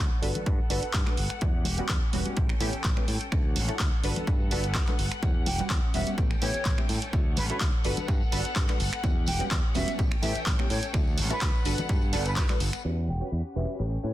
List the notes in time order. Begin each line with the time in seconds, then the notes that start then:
Already playing: D4 C#5 F#5
0.22 G1 B3 D4 F#4 A4 B4 F#5, open hi-hat, tambourine
0.35 closed hi-hat, tambourine, high conga, low conga
0.46 G2 D4 F#4 A4 B4, kick, closed hi-hat
0.59 muted fingered electric bass stroke, tambourine
0.70 G1 D4 F#4 A4 B4, open hi-hat, tambourine
0.83 muted fingered electric bass stroke, closed hi-hat, tambourine
0.93 G2, kick, clap, closed hi-hat
1.06 D4 F#4 A4 B4, finger snap, clap, high conga
1.17 G1, open hi-hat, tambourine
1.30 finger snap, closed hi-hat
1.41 E2 G3 B3 C#4 F#4 G4, kick, closed hi-hat
1.65 E1, open hi-hat, tambourine, high conga
1.78 G3 B3 C#4 F#4, muted fingered electric bass stroke, closed hi-hat
1.89 E2, kick, clap, closed hi-hat
2.13 E1 G3 B3 C#4 F#4, open hi-hat, tambourine
2.26 closed hi-hat, tambourine, high conga
2.36 A1 B3 C#4 E4 G4 A4 G5, kick, closed hi-hat
2.49 finger snap, tambourine
2.60 A2 B3 C#4 E4 G4, open hi-hat, tambourine, low conga
2.73 muted fingered electric bass stroke, closed hi-hat, tambourine
2.84 A1, kick, clap, closed hi-hat
2.97 B3 C#4 E4 G4, finger snap, high conga
3.08 A2, open hi-hat, tambourine
3.21 closed hi-hat, tambourine
3.32 D2 C#4 D4 E4 F#4 A4 C#5 F#5, finger snap, kick, closed hi-hat
3.56 A1, open hi-hat, tambourine, high conga
3.68 C#4 E4 F#4 A4, muted fingered electric bass stroke, closed hi-hat, tambourine
3.79 D2, kick, clap, closed hi-hat
4.03 G1 B3 D4 F#4 A4 B4 F#5, open hi-hat, tambourine
4.16 closed hi-hat, tambourine, high conga, low conga
4.27 G2 D4 F#4 A4 B4, kick, closed hi-hat, tambourine
4.40 tambourine
4.51 G1 D4 F#4 A4 B4, open hi-hat, tambourine
4.64 closed hi-hat
4.75 G2, kick, clap, closed hi-hat
4.87 D4 F#4 A4 B4, finger snap, clap, high conga
4.99 G1, open hi-hat, tambourine
5.12 finger snap, closed hi-hat, tambourine
5.23 E2 G3 B3 C#4 F#4 G4, kick, closed hi-hat, tambourine
5.46 E1 G5, open hi-hat, tambourine, high conga
5.59 G3 B3 C#4 F#4, muted fingered electric bass stroke, closed hi-hat, tambourine
5.70 E2, kick, clap, closed hi-hat
5.94 E1 G3 B3 C#4 F#4 E5, open hi-hat, tambourine
6.07 closed hi-hat, tambourine, high conga
6.18 A1 B3 C#4 E4 G4 A4 G5, kick, closed hi-hat, tambourine
6.31 finger snap, tambourine
6.42 A2 B3 C#4 E4 G4 C#5, open hi-hat, tambourine, low conga
6.54 muted fingered electric bass stroke, closed hi-hat, tambourine
6.65 A1, kick, clap, closed hi-hat
6.78 B3 C#4 E4 G4, finger snap, high conga
6.89 A2, open hi-hat, tambourine
7.02 closed hi-hat, tambourine
7.13 D2 C#4 D4 E4 F#4 A4 C#5 F#5, kick, closed hi-hat, tambourine
7.36 A1 B4, open hi-hat, tambourine, high conga
7.49 C#4 E4 F#4 A4 B4, muted fingered electric bass stroke, closed hi-hat, tambourine
7.60 D2, kick, clap, closed hi-hat
7.84 G1 B3 D4 F#4 A4 B4, open hi-hat, tambourine
7.97 closed hi-hat, tambourine, high conga, low conga
8.08 G2 D4 F#4 A4 B4, kick, closed hi-hat, tambourine
8.22 muted fingered electric bass stroke, tambourine
8.32 G1 D4 F#4 A4 B4, open hi-hat, tambourine
8.45 muted fingered electric bass stroke, closed hi-hat, tambourine
8.56 G2, kick, clap, closed hi-hat
8.69 D4 F#4 A4 B4, finger snap, clap, high conga
8.80 G1, open hi-hat, tambourine
8.92 finger snap, closed hi-hat, tambourine
9.03 E2 G3 B3 C#4 F#4 G4, kick, closed hi-hat, tambourine
9.26 E1 G5, open hi-hat, tambourine, high conga
9.40 G3 B3 C#4 F#4, muted fingered electric bass stroke, closed hi-hat, tambourine
9.51 E2, kick, clap, closed hi-hat, tambourine
9.74 E1 G3 B3 C#4 F#4 E5, open hi-hat, tambourine
9.88 closed hi-hat, tambourine, high conga
9.98 A1 B3 C#4 E4 G4 A4 G5, kick, closed hi-hat, tambourine
10.11 finger snap, tambourine
10.22 A2 B3 C#4 E4 G4 E5, open hi-hat, tambourine, low conga
10.35 muted fingered electric bass stroke, closed hi-hat, tambourine
10.46 A1, kick, clap, closed hi-hat, tambourine
10.59 B3 C#4 E4 G4, finger snap, high conga
10.70 A2 C#5, open hi-hat, tambourine
10.83 closed hi-hat, tambourine
10.93 D2 C#4 D4 E4 F#4 A4 C#5 F#5, finger snap, kick, closed hi-hat, tambourine
11.07 tambourine
11.17 A1, open hi-hat, tambourine, high conga
11.30 C#4 E4 F#4 A4 B4, muted fingered electric bass stroke, closed hi-hat, tambourine
11.41 D2, kick, clap, closed hi-hat, tambourine
11.54 tambourine
11.65 G1 B3 D4 F#4 A4 B4, open hi-hat, tambourine
11.78 closed hi-hat, tambourine, high conga, low conga
11.89 G2 D4 F#4 A4 B4, kick, closed hi-hat, tambourine
12.02 tambourine
12.13 G1 D4 F#4 A4 B4, open hi-hat, tambourine
12.26 B4, closed hi-hat, tambourine
12.36 G2 B4, kick, clap, closed hi-hat
12.49 D4 F#4 A4 B4, finger snap, clap, tambourine, high conga
12.60 G1, open hi-hat, tambourine
12.73 finger snap, closed hi-hat, tambourine
12.85 E2 C#4 F#4 G4 B4 F#5
13.08 E1 G5
13.21 C#4 F#4 G4 B4, muted fingered electric bass stroke
13.32 E2
13.55 E1 C#4 F#4 G4 B4 E5
13.79 A1 C#4 E4 G4 A4 B4 G5
14.03 A2 C#4 E4 G4 B4 C#5